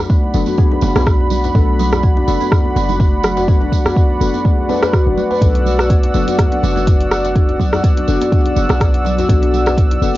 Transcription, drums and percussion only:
0.10 kick loud
0.10 tambourine soft
0.24 djembe tone medium
0.34 tambourine medium
0.46 tambourine medium
0.46 high conga medium
0.46 djembe tone medium
0.58 kick loud
0.58 tambourine soft
0.58 high conga medium
0.72 djembe tone medium
0.81 tambourine loud
0.81 djembe slap loud
0.81 high conga medium
0.81 low conga medium
0.95 cross-stick medium
0.95 tambourine medium
0.95 djembe slap loud
0.95 high conga loud
0.95 djembe tone medium
1.06 kick loud
1.06 cross-stick medium
1.06 tambourine soft
1.21 djembe tone medium
1.30 tambourine medium
1.30 low conga loud
1.44 tambourine medium
1.44 djembe slap medium
1.44 djembe tone medium
1.55 kick loud
1.55 tambourine soft
1.69 djembe tone medium
1.79 tambourine medium
1.79 low conga medium
1.92 cross-stick medium
1.92 tambourine medium
1.92 djembe slap medium
1.92 high conga medium
1.92 djembe tone loud
2.03 kick loud
2.03 tambourine soft
2.17 djembe tone loud
2.28 tambourine loud
2.40 tambourine soft
2.40 djembe tone medium
2.40 high conga medium
2.52 kick loud
2.52 cross-stick medium
2.52 tambourine soft
2.52 djembe bass medium
2.65 high conga medium
2.65 djembe tone medium
2.76 tambourine medium
2.76 djembe slap loud
2.76 high conga medium
2.76 low conga medium
2.89 tambourine medium
2.89 djembe tone medium
2.89 low conga loud
3.00 kick loud
3.00 tambourine soft
3.00 djembe bass medium
3.13 djembe tone medium
3.24 cross-stick medium
3.24 tambourine medium
3.37 tambourine medium
3.37 djembe slap medium
3.37 djembe tone medium
3.48 kick loud
3.48 tambourine soft
3.61 djembe tone medium
3.72 kick medium
3.72 tambourine medium
3.72 low conga medium
3.85 cross-stick medium
3.85 tambourine medium
3.85 djembe slap medium
3.85 djembe tone medium
3.85 djembe bass medium
3.97 kick loud
3.97 tambourine soft
4.10 djembe tone medium
4.20 tambourine medium
4.20 low conga medium
4.33 tambourine medium
4.33 djembe tone medium
4.33 high conga medium
4.45 kick loud
4.45 tambourine soft
4.45 high conga medium
4.58 djembe tone medium
4.69 tambourine medium
4.69 djembe slap loud
4.69 high conga medium
4.69 low conga medium
4.83 cross-stick medium
4.83 tambourine soft
4.83 djembe slap loud
4.83 high conga medium
4.83 djembe tone medium
4.93 kick loud
4.93 cross-stick medium
4.93 tambourine soft
5.07 djembe tone medium
5.17 tambourine loud
5.17 low conga loud
5.31 tambourine medium
5.31 djembe slap medium
5.31 djembe tone medium
5.42 kick loud
5.42 closed hi-hat medium
5.42 tambourine soft
5.55 closed hi-hat soft
5.55 djembe tone medium
5.66 tambourine medium
5.66 low conga medium
5.79 cross-stick medium
5.79 tambourine medium
5.79 djembe slap medium
5.79 high conga medium
5.79 djembe tone medium
5.90 kick loud
5.90 closed hi-hat medium
5.90 tambourine soft
6.03 closed hi-hat soft
6.03 djembe tone medium
6.14 tambourine medium
6.27 closed hi-hat soft
6.27 tambourine medium
6.27 high conga medium
6.27 djembe tone medium
6.39 kick loud
6.39 cross-stick medium
6.39 closed hi-hat medium
6.39 tambourine soft
6.39 djembe bass medium
6.52 closed hi-hat soft
6.52 djembe tone medium
6.52 high conga medium
6.63 tambourine medium
6.63 djembe slap medium
6.63 high conga medium
6.63 low conga medium
6.76 tambourine medium
6.76 djembe tone medium
6.76 low conga medium
6.87 kick loud
6.87 closed hi-hat medium
6.87 tambourine soft
6.87 djembe bass medium
7.00 closed hi-hat soft
7.00 djembe tone medium
7.11 cross-stick medium
7.11 tambourine medium
7.24 closed hi-hat soft
7.24 tambourine soft
7.24 djembe slap medium
7.24 djembe tone medium
7.36 kick loud
7.36 closed hi-hat medium
7.36 tambourine soft
7.49 closed hi-hat soft
7.49 djembe tone medium
7.60 kick medium
7.60 tambourine medium
7.60 low conga medium
7.73 cross-stick medium
7.73 tambourine medium
7.73 djembe slap medium
7.73 djembe tone medium
7.73 djembe bass medium
7.84 kick loud
7.84 closed hi-hat medium
7.84 tambourine soft
7.97 closed hi-hat soft
7.97 djembe tone medium
8.08 tambourine medium
8.21 closed hi-hat soft
8.21 tambourine soft
8.21 djembe tone medium
8.21 high conga medium
8.32 kick loud
8.32 closed hi-hat medium
8.32 tambourine soft
8.32 high conga medium
8.46 closed hi-hat soft
8.46 djembe tone medium
8.56 tambourine medium
8.56 djembe slap medium
8.56 high conga medium
8.56 low conga medium
8.69 cross-stick medium
8.69 tambourine soft
8.69 djembe slap loud
8.69 high conga medium
8.69 djembe tone medium
8.81 kick loud
8.81 cross-stick medium
8.81 closed hi-hat medium
8.81 tambourine soft
8.94 closed hi-hat soft
8.94 djembe tone medium
9.05 tambourine medium
9.05 low conga medium
9.18 closed hi-hat soft
9.18 tambourine medium
9.18 djembe slap medium
9.18 djembe tone medium
9.29 kick loud
9.29 closed hi-hat medium
9.29 tambourine soft
9.43 closed hi-hat soft
9.43 djembe tone medium
9.54 tambourine medium
9.54 low conga medium
9.66 cross-stick medium
9.66 tambourine soft
9.66 djembe slap medium
9.66 high conga medium
9.66 djembe tone medium
9.77 kick loud
9.77 closed hi-hat medium
9.77 tambourine soft
9.91 closed hi-hat soft
9.91 djembe tone medium
10.02 tambourine medium
10.14 high conga medium

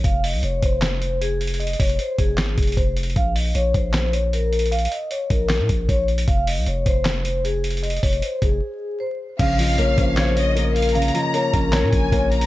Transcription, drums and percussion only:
0.04 kick loud
0.04 closed hi-hat medium
0.24 open hi-hat medium
0.43 closed hi-hat medium
0.63 kick medium
0.63 closed hi-hat medium
0.81 snare loud
0.81 clap medium
0.81 closed hi-hat medium
1.02 closed hi-hat medium
1.22 closed hi-hat medium
1.41 closed hi-hat medium
1.47 closed hi-hat medium
1.54 closed hi-hat medium
1.60 closed hi-hat medium
1.67 closed hi-hat medium
1.73 closed hi-hat medium
1.80 kick medium
1.80 closed hi-hat soft
1.80 open hi-hat medium
1.90 closed hi-hat medium
1.99 closed hi-hat medium
2.19 kick medium
2.19 closed hi-hat medium
2.37 snare loud
2.37 clap medium
2.37 closed hi-hat medium
2.58 kick medium
2.58 closed hi-hat medium
2.63 closed hi-hat medium
2.67 closed hi-hat medium
2.72 closed hi-hat medium
2.77 kick medium
2.77 closed hi-hat medium
2.97 closed hi-hat medium
3.03 closed hi-hat medium
3.10 closed hi-hat soft
3.16 kick loud
3.16 closed hi-hat medium
3.36 open hi-hat medium
3.55 closed hi-hat medium
3.74 kick loud
3.74 closed hi-hat medium
3.93 snare loud
3.93 clap medium
3.93 closed hi-hat medium
4.13 closed hi-hat medium
4.33 closed hi-hat medium
4.53 closed hi-hat medium
4.59 closed hi-hat medium
4.66 closed hi-hat medium
4.72 closed hi-hat medium
4.79 closed hi-hat medium
4.85 closed hi-hat medium
4.92 closed hi-hat medium
5.11 closed hi-hat medium
5.30 kick loud
5.30 closed hi-hat medium
5.49 snare loud
5.49 clap medium
5.49 closed hi-hat medium
5.69 kick loud
5.69 closed hi-hat medium
5.89 kick medium
5.89 closed hi-hat medium
6.08 closed hi-hat medium
6.18 closed hi-hat medium
6.28 kick loud
6.28 closed hi-hat medium
6.47 open hi-hat medium
6.66 closed hi-hat medium
6.86 kick medium
6.86 closed hi-hat medium
7.05 snare loud
7.05 clap medium
7.05 closed hi-hat medium
7.25 closed hi-hat medium
7.45 closed hi-hat medium
7.64 closed hi-hat medium
7.71 closed hi-hat medium
7.77 closed hi-hat medium
7.84 closed hi-hat medium
7.90 closed hi-hat medium
7.97 closed hi-hat medium
8.03 kick loud
8.03 closed hi-hat soft
8.03 open hi-hat medium
8.13 closed hi-hat medium
8.22 closed hi-hat medium
8.42 kick medium
8.42 closed hi-hat medium
9.39 kick loud
9.39 closed hi-hat medium
9.39 crash loud
9.59 open hi-hat medium
9.78 closed hi-hat medium
9.98 kick loud
9.98 closed hi-hat medium
10.17 snare loud
10.17 clap medium
10.17 closed hi-hat medium
10.37 closed hi-hat medium
10.57 closed hi-hat medium
10.76 closed hi-hat medium
10.82 closed hi-hat medium
10.89 closed hi-hat medium
10.95 closed hi-hat medium
11.02 closed hi-hat medium
11.08 closed hi-hat medium
11.15 closed hi-hat medium
11.34 closed hi-hat medium
11.54 kick loud
11.54 closed hi-hat medium
11.72 snare loud
11.72 clap medium
11.72 closed hi-hat medium
11.93 kick loud
11.93 closed hi-hat medium
12.12 kick medium
12.12 closed hi-hat medium
12.32 closed hi-hat medium
12.41 closed hi-hat medium

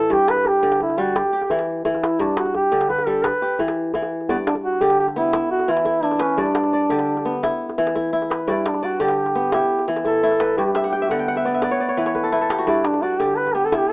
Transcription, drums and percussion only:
0.10 djembe bass medium
0.28 djembe slap medium
0.36 djembe tone soft
0.45 djembe bass medium
0.63 djembe slap soft
0.72 djembe slap soft
0.80 djembe bass medium
0.90 djembe tone soft
0.99 djembe slap soft
1.16 djembe slap medium
1.16 djembe bass medium
1.42 djembe tone soft
1.50 djembe bass medium
1.59 djembe slap soft
1.85 djembe bass medium
1.95 djembe tone soft
2.03 djembe slap medium
2.20 djembe slap soft
2.20 djembe bass medium
2.37 djembe slap medium
2.46 djembe slap soft
2.46 djembe tone soft
2.55 djembe slap soft
2.55 djembe bass medium
2.72 djembe slap soft
2.81 djembe slap medium
2.90 djembe slap soft
2.90 djembe bass medium
2.98 djembe tone soft
3.24 djembe slap medium
3.24 djembe bass medium
3.59 djembe bass medium
3.68 djembe slap medium
3.94 djembe slap soft
3.94 djembe bass medium
4.02 djembe tone medium
4.21 djembe slap soft
4.29 djembe bass medium
4.47 djembe slap medium
4.55 djembe slap soft
4.55 djembe tone soft
4.73 djembe slap soft
4.81 djembe bass medium
4.90 djembe slap soft
5.08 djembe tone soft
5.33 djembe slap medium
5.33 djembe bass medium
5.51 djembe slap soft
5.59 djembe tone soft
5.77 djembe slap soft
5.85 djembe bass medium
6.11 djembe tone soft
6.19 djembe slap medium
6.29 djembe slap soft
6.38 djembe bass medium
6.55 djembe slap medium
6.63 djembe slap soft
6.63 djembe tone soft
6.81 djembe slap soft
6.90 djembe bass medium
6.99 djembe slap soft
7.17 djembe tone soft
7.43 djembe slap medium
7.43 djembe bass medium
7.61 djembe slap soft
7.69 djembe tone soft
7.87 djembe slap soft
7.95 djembe bass medium
8.22 djembe tone soft
8.31 djembe slap medium
8.40 djembe slap soft
8.48 djembe bass medium
8.66 djembe slap medium
8.74 djembe slap soft
8.74 djembe tone soft
8.92 djembe slap soft
9.00 djembe bass medium
9.08 djembe slap soft
9.26 djembe tone soft
9.52 djembe slap medium
9.52 djembe bass medium
9.70 djembe slap soft
9.79 djembe tone soft
9.96 djembe slap soft
10.05 djembe bass medium
10.31 djembe tone soft
10.40 djembe slap medium
10.49 djembe slap soft
10.57 djembe slap soft
10.57 djembe bass medium
10.75 djembe slap medium
10.83 djembe tone soft
11.10 djembe slap soft
11.10 djembe bass medium
11.36 djembe tone soft
11.62 djembe slap medium
11.62 djembe bass medium
11.89 djembe slap soft
12.06 djembe slap soft
12.15 djembe bass medium
12.24 djembe slap soft
12.41 djembe slap soft
12.41 djembe tone soft
12.50 djembe slap medium
12.59 djembe slap soft
12.67 djembe bass medium
12.84 djembe slap medium
12.94 djembe slap soft
12.94 djembe tone soft
13.12 djembe slap soft
13.20 djembe bass medium
13.46 djembe tone soft
13.72 djembe slap medium
13.72 djembe bass medium
13.90 djembe slap soft

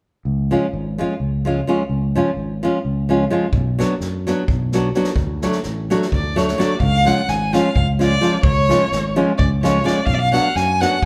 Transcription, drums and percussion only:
3.53 kick medium
3.79 snare soft
4.00 snare soft
4.26 snare soft
4.48 kick medium
4.72 snare soft
4.94 snare soft
5.04 snare soft
5.16 kick medium
5.41 snare soft
5.52 snare soft
5.63 snare soft
5.90 snare soft
6.02 snare soft
6.12 kick medium
6.37 snare soft
6.48 snare soft
6.60 snare soft
6.80 kick medium
7.06 snare soft
7.28 snare soft
7.53 snare soft
7.76 kick medium
8.00 snare soft
8.22 snare soft
8.43 kick loud
8.69 snare soft
8.92 snare soft
9.39 kick medium
9.64 snare soft
9.87 snare soft
10.07 kick medium
10.33 snare soft
10.56 snare soft
10.81 snare soft

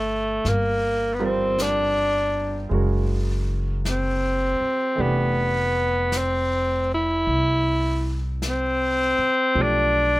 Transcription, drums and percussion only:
0.45 brush sweep soft
0.45 snare soft
1.59 brush sweep soft
1.59 snare soft
1.59 hi-hat pedal soft
2.72 brush sweep soft
3.85 brush sweep soft
3.85 snare soft
3.85 hi-hat pedal soft
4.98 brush sweep soft
6.12 brush sweep soft
6.12 snare soft
6.12 hi-hat pedal soft
7.27 brush sweep soft
8.42 brush sweep soft
8.42 snare soft
8.42 hi-hat pedal soft
9.56 brush sweep soft

